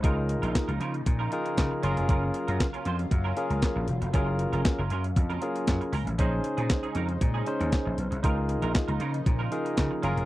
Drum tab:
HH |x-xxxxxxx-xxx-xx|x-xxxxxxx-xxx-xx|x-xxx-xxxxxxxxox|x-xxxxxxx-xxx-xx|
CP |----x-------x---|----x-------x---|----x-------x---|----x-------x---|
SD |----o-------o---|----o-------o---|----o-------o---|----o-------o---|
BD |o---o---o---o---|o---o---o---o---|o---o---o---o---|o---o---o---o---|

HH |x-xxxxxxx-xxx-xx|
CP |----x-------x---|
SD |----o-------o---|
BD |o---o---o---o---|